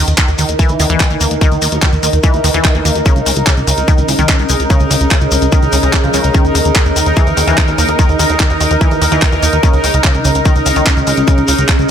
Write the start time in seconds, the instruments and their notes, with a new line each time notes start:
Already playing: ambient pad D#4, synth texture D#4 A#4
0.07 analog synth bass D#2, closed hi-hat, shekere
0.18 synth arpeggio sound D#3, ambient pad A#4, kick, clap, closed hi-hat, shekere
0.28 analog synth bass D#2, ambient pad D#5, closed hi-hat, shekere
0.38 analog synth bass D#2, synth arpeggio sound D#3, open hi-hat, shekere
0.49 analog synth bass D#2, closed hi-hat, shekere
0.59 synth arpeggio sound E3, kick, closed hi-hat, shekere
0.69 analog synth bass D#2, closed hi-hat, shekere
0.80 analog synth bass D#2, synth arpeggio sound D#3, wobble bass A#3, open hi-hat, shekere
0.90 analog synth bass D#2, synth arpeggio sound E3, wobble bass A#3, closed hi-hat, shekere
1.00 synth arpeggio sound D#3, kick, clap, closed hi-hat, shekere
1.10 analog synth bass D#2, closed hi-hat, shekere
1.21 analog synth bass D#2, synth arpeggio sound A#3, open hi-hat, shekere
1.31 analog synth bass D#2, closed hi-hat, shekere
1.41 synth arpeggio sound D#3, kick, closed hi-hat, shekere
1.52 analog synth bass D#2, closed hi-hat, shekere
1.62 analog synth bass D#2, synth arpeggio sound D#3, open hi-hat, shekere
1.72 analog synth bass D#2, wobble bass F#3, closed hi-hat, shekere
1.82 synth arpeggio sound D#3, wobble bass F#3, kick, clap, closed hi-hat, shekere
1.93 analog synth bass D#2, closed hi-hat, shekere
2.03 analog synth bass D#2, synth arpeggio sound D#3, open hi-hat, shekere
2.13 analog synth bass D#2, closed hi-hat, shekere
2.23 synth arpeggio sound E3, kick, closed hi-hat, shekere
2.34 analog synth bass D#2, closed hi-hat, shekere
2.44 analog synth bass D#2, synth arpeggio sound D#3, wobble bass D#3, open hi-hat, shekere
2.54 analog synth bass D#2, synth arpeggio sound E3, closed hi-hat, shekere
2.65 synth arpeggio sound D#3, kick, clap, closed hi-hat, shekere
2.75 analog synth bass D#2, closed hi-hat, shekere
2.85 analog synth bass D#2, synth arpeggio sound A#3, open hi-hat, shekere
2.95 analog synth bass D#2, closed hi-hat, shekere
3.06 synth arpeggio sound C#3, ambient pad C#4, kick, closed hi-hat, shekere
3.16 analog synth bass C#2, closed hi-hat, shekere
3.26 analog synth bass C#2, synth arpeggio sound C#3, open hi-hat, shekere
3.35 analog synth bass C#2, ambient pad G#4, closed hi-hat, shekere
3.47 synth arpeggio sound C#3, kick, clap, closed hi-hat, shekere
3.57 analog synth bass C#2, closed hi-hat, shekere
3.67 analog synth bass C#2, synth arpeggio sound C#3, open hi-hat, shekere
3.77 analog synth bass C#2, closed hi-hat, shekere
3.86 synth arpeggio sound D#3, ambient pad C#5, kick, closed hi-hat, shekere
3.98 analog synth bass C#2, closed hi-hat, shekere
4.08 analog synth bass C#2, synth arpeggio sound C#3, open hi-hat, shekere
4.19 analog synth bass C#2, synth arpeggio sound D#3, closed hi-hat, shekere
4.29 synth arpeggio sound C#3, kick, clap, closed hi-hat, shekere
4.39 analog synth bass C#2, closed hi-hat, shekere
4.49 analog synth bass C#2, synth arpeggio sound G#3, open hi-hat, shekere
4.60 analog synth bass C#2, closed hi-hat, shekere
4.70 synth arpeggio sound C#3, kick, closed hi-hat, shekere
4.80 analog synth bass C#2, closed hi-hat, shekere
4.91 analog synth bass C#2, synth arpeggio sound C#3, open hi-hat, shekere
5.00 analog synth bass C#2, closed hi-hat, shekere
5.11 synth arpeggio sound C#3, kick, clap, closed hi-hat, shekere
5.21 analog synth bass C#2, closed hi-hat, shekere
5.31 analog synth bass C#2, synth arpeggio sound C#3, open hi-hat, shekere
5.42 analog synth bass C#2, closed hi-hat, shekere
5.52 synth arpeggio sound D#3, kick, closed hi-hat, shekere
5.63 analog synth bass C#2, closed hi-hat, shekere
5.72 analog synth bass C#2, synth arpeggio sound C#3, open hi-hat, shekere
5.83 analog synth bass C#2, synth arpeggio sound C#3, closed hi-hat, shekere
5.93 synth arpeggio sound C#3, kick, clap, closed hi-hat, shekere
6.04 analog synth bass C#2, synth arpeggio sound F3, closed hi-hat, shekere
6.14 analog synth bass C#2, synth arpeggio sound C#3, open hi-hat, shekere
6.24 analog synth bass C#2, closed hi-hat, shekere
6.34 synth arpeggio sound D#3, ambient pad D#4, kick, closed hi-hat, shekere
6.41 analog synth bass D#2, ambient pad A#4, closed hi-hat
6.45 shekere
6.55 analog synth bass D#2, synth arpeggio sound D#3, open hi-hat, shekere
6.65 analog synth bass D#2, closed hi-hat, shekere
6.76 synth arpeggio sound D#3, kick, clap, closed hi-hat, shekere
6.86 analog synth bass D#2, closed hi-hat, shekere
6.93 analog synth bass D#2, synth arpeggio sound D#3, ambient pad D#5, open hi-hat, shekere
7.06 analog synth bass D#2, closed hi-hat
7.17 synth arpeggio sound E3, kick, closed hi-hat, shekere
7.27 analog synth bass D#2, closed hi-hat, shekere
7.37 analog synth bass D#2, synth arpeggio sound D#3, wobble bass A#3, open hi-hat, shekere
7.47 analog synth bass D#2, synth arpeggio sound E3, wobble bass A#3, closed hi-hat, shekere
7.58 synth arpeggio sound D#3, kick, clap, closed hi-hat, shekere
7.68 analog synth bass D#2, closed hi-hat, shekere
7.78 analog synth bass D#2, synth arpeggio sound A#3, open hi-hat, shekere
7.88 analog synth bass D#2, closed hi-hat, shekere
7.99 synth arpeggio sound D#3, kick, closed hi-hat, shekere
8.09 analog synth bass D#2, closed hi-hat, shekere
8.19 analog synth bass D#2, synth arpeggio sound D#3, open hi-hat, shekere
8.30 analog synth bass D#2, wobble bass G#3, closed hi-hat, shekere
8.40 synth arpeggio sound D#3, wobble bass G#3, kick, clap, closed hi-hat, shekere
8.50 analog synth bass D#2, closed hi-hat, shekere
8.60 analog synth bass D#2, synth arpeggio sound D#3, open hi-hat, shekere
8.71 analog synth bass D#2, closed hi-hat, shekere
8.81 synth arpeggio sound E3, kick, closed hi-hat, shekere
8.91 analog synth bass D#2, closed hi-hat, shekere
9.02 analog synth bass D#2, synth arpeggio sound D#3, open hi-hat, shekere
9.12 analog synth bass D#2, synth arpeggio sound E3, closed hi-hat, shekere
9.22 synth arpeggio sound D#3, kick, clap, closed hi-hat, shekere
9.32 analog synth bass D#2, closed hi-hat, shekere
9.43 analog synth bass D#2, synth arpeggio sound A#3, open hi-hat, shekere
9.53 analog synth bass D#2, closed hi-hat, shekere
9.63 synth arpeggio sound C#3, ambient pad C#4, kick, closed hi-hat, shekere
9.73 analog synth bass C#2, closed hi-hat, shekere
9.82 analog synth bass C#2, synth arpeggio sound C#3, ambient pad C#5, open hi-hat, shekere
9.94 analog synth bass C#2, ambient pad G#4, closed hi-hat, shekere
10.04 synth arpeggio sound C#3, kick, clap, closed hi-hat, shekere
10.14 analog synth bass C#2, closed hi-hat, shekere
10.25 analog synth bass C#2, synth arpeggio sound C#3, open hi-hat, shekere
10.35 analog synth bass C#2, closed hi-hat, shekere
10.45 synth arpeggio sound D#3, kick, closed hi-hat, shekere
10.56 analog synth bass C#2, closed hi-hat, shekere
10.66 analog synth bass C#2, synth arpeggio sound C#3, open hi-hat, shekere
10.76 analog synth bass C#2, synth arpeggio sound D#3, closed hi-hat, shekere
10.87 synth arpeggio sound C#3, kick, clap, closed hi-hat, shekere
10.97 analog synth bass C#2, closed hi-hat, shekere
11.07 analog synth bass C#2, synth arpeggio sound G#3, open hi-hat, shekere
11.17 analog synth bass C#2, closed hi-hat, shekere
11.27 synth arpeggio sound C#3, kick, closed hi-hat, shekere
11.37 analog synth bass C#2, closed hi-hat, shekere
11.48 analog synth bass C#2, synth arpeggio sound C#3, open hi-hat, shekere
11.58 analog synth bass C#2, closed hi-hat, shekere
11.68 synth arpeggio sound C#3, kick, clap, closed hi-hat, shekere
11.79 analog synth bass C#2, closed hi-hat, shekere